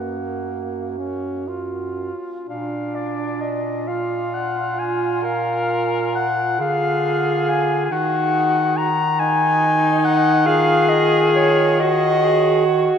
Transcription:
Already playing: bass clarinet F#2, tenor saxophone A#3, alto saxophone F#4, clarinet F#5
0.98 tenor saxophone C#4
1.48 tenor saxophone F4
2.48 bass clarinet A#2, tenor saxophone D4, alto saxophone D4, clarinet F5
2.95 clarinet D5
3.41 clarinet D#5
3.87 alto saxophone F4, tenor saxophone F4, clarinet F5
4.34 clarinet F#5
4.79 clarinet G#5
5.23 tenor saxophone A#4, clarinet F5
6.15 clarinet F#5
6.59 bass clarinet D3, alto saxophone F4, tenor saxophone G#4, clarinet F5
7.49 clarinet G#5
7.85 clarinet G#5
7.91 bass clarinet D#3, alto saxophone D#4, tenor saxophone F#4, clarinet F#5
8.77 clarinet A#5
9.19 tenor saxophone D#4, alto saxophone D#4, clarinet G#5
10.05 clarinet F#5
10.46 alto saxophone F4, tenor saxophone G#4, clarinet F5
10.89 clarinet D#5
11.35 clarinet C#5
11.79 alto saxophone F#4, tenor saxophone F#4, clarinet D#5
12.24 tenor saxophone G#4
12.67 tenor saxophone F#4

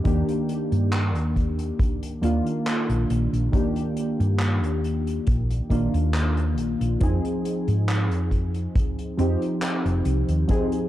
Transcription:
0.04 fingered electric bass D#2, synth keys D#3 A#3 D4 G4, kick, closed hi-hat
0.29 closed hi-hat
0.49 closed hi-hat
0.72 fingered electric bass G2, closed hi-hat
0.92 clap, closed hi-hat
1.15 fingered electric bass D#2, closed hi-hat
1.36 kick, closed hi-hat
1.59 closed hi-hat
1.79 kick, closed hi-hat
2.03 closed hi-hat
2.21 fingered electric bass D#2, synth keys D#3 A#3 D4 F4, closed hi-hat
2.47 closed hi-hat
2.67 clap, closed hi-hat
2.89 fingered electric bass A#1, closed hi-hat
3.10 fingered electric bass A#1, closed hi-hat
3.33 fingered electric bass A#1, closed hi-hat
3.52 synth keys D#3 A#3 D4 G4, kick, closed hi-hat
3.76 closed hi-hat
3.97 closed hi-hat
4.20 fingered electric bass G2, closed hi-hat
4.39 clap, closed hi-hat
4.63 fingered electric bass D#2, closed hi-hat
4.84 closed hi-hat
5.07 closed hi-hat
5.27 fingered electric bass A#1, kick, closed hi-hat
5.51 closed hi-hat
5.70 fingered electric bass A#1, synth keys D#3 A#3 D4 F4, kick, closed hi-hat
5.94 fingered electric bass D#2, closed hi-hat
6.14 clap, closed hi-hat
6.37 closed hi-hat
6.58 fingered electric bass A#1, closed hi-hat
6.81 fingered electric bass A#1, closed hi-hat
7.00 fingered electric bass F2, synth keys F3 C4 D#4 G#4, kick, closed hi-hat
7.25 closed hi-hat
7.45 closed hi-hat
7.68 fingered electric bass G#2, closed hi-hat
7.89 clap, closed hi-hat
8.11 fingered electric bass F2, closed hi-hat
8.31 kick, closed hi-hat
8.54 closed hi-hat
8.75 kick, closed hi-hat
8.99 closed hi-hat
9.17 fingered electric bass F2, synth keys F3 C4 D#4 G4, closed hi-hat
9.42 closed hi-hat
9.62 clap, closed hi-hat
9.85 fingered electric bass F1, closed hi-hat
10.05 fingered electric bass C2, closed hi-hat
10.29 fingered electric bass D#2, closed hi-hat
10.48 synth keys F3 C4 D#4 G#4, kick, closed hi-hat
10.72 closed hi-hat

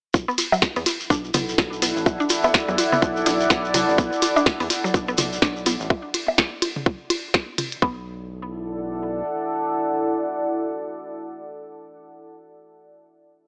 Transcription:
0.14 analog synth bass B1, ambient pad E4, kick, low bongo, shekere
0.28 synth arpeggio sound B3, shekere
0.37 ambient pad A4, closed hi-hat, ride, low bongo, shekere
0.52 synth arpeggio sound F#3, high bongo, shekere
0.62 kick, snare, low bongo, shekere
0.76 analog synth bass E2, synth arpeggio sound B3, ambient pad F#5, ride, shekere
0.86 closed hi-hat, ride, low bongo, shekere
0.99 ambient pad D5, shekere
1.10 analog synth bass B1, synth arpeggio sound D4, kick, low bongo, shekere
1.24 shekere
1.34 analog synth bass B1, synth arpeggio sound B3, closed hi-hat, mid tom, ride, low bongo, shekere
1.49 shekere
1.58 analog synth bass B1, synth arpeggio sound F#3, kick, snare, low bongo, shekere
1.73 shekere
1.82 synth arpeggio sound B3, closed hi-hat, ride, low bongo, shekere
1.96 analog synth bass A1, shekere
2.06 analog synth bass B1, kick, high bongo, low bongo, shekere
2.20 synth arpeggio sound D4, shekere
2.30 closed hi-hat, ride, low bongo, shekere
2.43 synth arpeggio sound B3, high bongo, shekere
2.54 kick, snare, low bongo, shekere
2.68 analog synth bass E2, synth arpeggio sound F#3, shekere
2.78 closed hi-hat, ride, low bongo, shekere
2.92 synth arpeggio sound B3, mid tom, shekere
3.02 analog synth bass B1, kick, low bongo, shekere
3.16 shekere
3.26 analog synth bass B1, synth arpeggio sound D4, closed hi-hat, ride, low bongo, shekere
3.40 shekere
3.50 analog synth bass B1, synth arpeggio sound B3, kick, snare, low bongo, shekere
3.64 shekere
3.74 synth arpeggio sound F#3, closed hi-hat, mid tom, ride, low bongo, shekere
3.88 analog synth bass A1, shekere
3.98 analog synth bass B1, synth arpeggio sound B3, kick, low bongo, shekere
4.12 shekere
4.22 closed hi-hat, ride, low bongo, shekere
4.36 synth arpeggio sound D4, high bongo, shekere
4.46 kick, snare, low bongo, shekere
4.60 analog synth bass E2, synth arpeggio sound B3, ride, shekere
4.70 closed hi-hat, ride, low bongo, shekere
4.84 synth arpeggio sound F#3, shekere
4.94 analog synth bass B1, kick, low bongo, shekere
5.08 synth arpeggio sound B3, shekere
5.18 analog synth bass B1, closed hi-hat, mid tom, ride, low bongo, shekere
5.33 shekere
5.42 analog synth bass B1, synth arpeggio sound D4, kick, snare, low bongo, shekere
5.56 shekere
5.66 synth arpeggio sound B3, closed hi-hat, ride, low bongo, shekere
5.80 analog synth bass A1, shekere
5.90 kick, high bongo, low bongo
6.14 closed hi-hat, ride, low bongo
6.28 high bongo
6.38 kick, snare, low bongo
6.62 closed hi-hat, ride, low bongo
6.76 mid tom
6.86 kick, low bongo
7.10 closed hi-hat, ride, low bongo
7.34 kick, snare, low bongo
7.58 closed hi-hat, mid tom, ride, low bongo
7.72 closed hi-hat
7.82 analog synth bass B1, synth arpeggio sound B3, ambient pad E4, kick
7.91 ambient pad A4
7.99 ambient pad D5
8.04 ambient pad F#5

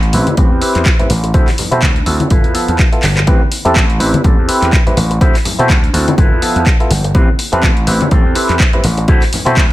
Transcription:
Already playing: slap bass A1
0.03 closed hi-hat
0.13 slap bass A1, clav C4 E4 G4 B4, muted clean electric guitar stroke, open hi-hat
0.27 closed hi-hat, tambourine, high conga
0.37 slap bass A1, clean electric guitar C4 G4 B4, kick, closed hi-hat, tambourine
0.51 slap bass E2, tambourine
0.61 clav C4 E4 G4 B4, open hi-hat, tambourine
0.75 slap bass E2, clap, closed hi-hat
0.86 kick, clap, closed hi-hat
0.99 clav C4 E4 G4 B4, closed hi-hat, low conga
1.10 slap bass A1, open hi-hat, tambourine
1.24 muted clean electric guitar stroke, closed hi-hat, tambourine
1.34 clav C4 E4 F#4 A4, clean electric guitar E4 F#4 C5, kick, closed hi-hat
1.47 clap, open hi-hat, tambourine, high conga
1.58 muted clean electric guitar stroke, open hi-hat, tambourine, low conga
1.71 slap bass B2, clav C4 E4 F#4 A4, clean electric guitar E4 F#4 C5, closed hi-hat, tambourine
1.82 slap bass D2, kick, clap, closed hi-hat, tambourine, high conga
1.96 closed hi-hat
2.06 slap bass D2, clav C4 E4 F#4 A4, muted clean electric guitar stroke, open hi-hat, tambourine
2.20 closed hi-hat, tambourine, high conga
2.30 slap bass G1, clean electric guitar E4 F4 A4 B4, kick, closed hi-hat, tambourine
2.44 slap bass E2, closed hi-hat, tambourine
2.54 clav F3 B3 A4 E5, open hi-hat, tambourine
2.68 slap bass E2, closed hi-hat
2.79 kick, clap, closed hi-hat
2.92 clav B3 E4 F4 A4, closed hi-hat
3.03 slap bass G1, clap, open hi-hat, tambourine, low conga
3.16 muted clean electric guitar stroke, clap, closed hi-hat, tambourine
3.27 slap bass A1, clav C4 E4 G4 B4, clean electric guitar C4 G4 B4, kick, closed hi-hat
3.41 high conga
3.52 muted clean electric guitar stroke, open hi-hat, tambourine
3.65 slap bass E2, clav C4 E4 G4 A4, clean electric guitar C4 G4 A4, closed hi-hat, tambourine
3.76 slap bass A1, kick, clap, closed hi-hat
3.90 closed hi-hat
3.99 slap bass A1, clav C4 E4 G4 B4, muted clean electric guitar stroke, open hi-hat, tambourine
4.14 closed hi-hat, tambourine, high conga
4.24 slap bass A1, clean electric guitar C4 G4 A4, kick, closed hi-hat, tambourine
4.37 slap bass E2, tambourine
4.48 clav C4 E4 G4 B4, open hi-hat, tambourine
4.62 slap bass E2, clap, closed hi-hat
4.73 kick, clap, closed hi-hat
4.86 clav C4 E4 G4 B4, closed hi-hat, low conga
4.97 slap bass A1, open hi-hat, tambourine
5.11 muted clean electric guitar stroke, closed hi-hat, tambourine
5.21 clav C4 E4 F#4 A4, clean electric guitar E4 F#4 C5, kick, closed hi-hat
5.35 clap, open hi-hat
5.45 muted clean electric guitar stroke, open hi-hat, tambourine, low conga
5.59 slap bass B2, clav C4 E4 F#4 A4, clean electric guitar E4 F#4 C5, closed hi-hat, tambourine
5.70 slap bass D2, kick, clap, closed hi-hat
5.84 closed hi-hat
5.93 slap bass D2, clav C4 E4 F#4 A4, muted clean electric guitar stroke, open hi-hat, tambourine
6.07 closed hi-hat, tambourine, high conga
6.17 slap bass G1, clean electric guitar E4 F4 A4 B4, kick, closed hi-hat
6.32 slap bass E2, tambourine
6.42 clav F3 B3 A4 E5, open hi-hat, tambourine
6.56 slap bass E2, closed hi-hat, tambourine
6.66 kick, clap, closed hi-hat
6.80 clav B3 E4 F4 A4, closed hi-hat
6.90 slap bass G1, open hi-hat, tambourine, low conga
7.04 muted clean electric guitar stroke, closed hi-hat, tambourine
7.14 slap bass A1, clav C4 E4 G4 B4, clean electric guitar C4 G4 B4, kick, closed hi-hat
7.29 high conga
7.39 muted clean electric guitar stroke, open hi-hat, tambourine
7.52 slap bass E2, clav C4 E4 G4 A4, clean electric guitar C4 G4 B4, closed hi-hat, tambourine
7.63 slap bass A1, kick, clap, closed hi-hat
7.77 closed hi-hat
7.87 slap bass A1, clav C4 E4 G4 B4, muted clean electric guitar stroke, open hi-hat
8.01 closed hi-hat, tambourine, high conga
8.11 slap bass A1, clean electric guitar C4 G4 A4, kick, closed hi-hat, tambourine
8.25 slap bass E2, tambourine
8.35 clav C4 E4 G4 B4, open hi-hat, tambourine
8.49 slap bass E2, clap, closed hi-hat
8.60 kick, clap, closed hi-hat
8.73 clav C4 E4 G4 B4, closed hi-hat, low conga
8.84 slap bass A1, open hi-hat, tambourine
8.97 muted clean electric guitar stroke, closed hi-hat, tambourine
9.08 clav C4 E4 F#4 A4, clean electric guitar E4 F#4 C5, kick, closed hi-hat
9.22 clap, open hi-hat
9.33 muted clean electric guitar stroke, open hi-hat, tambourine, low conga
9.45 slap bass B2, clav C4 E4 F#4 A4, clean electric guitar E4 F#4 C5, closed hi-hat, tambourine
9.57 slap bass D2, kick, clap, closed hi-hat, tambourine

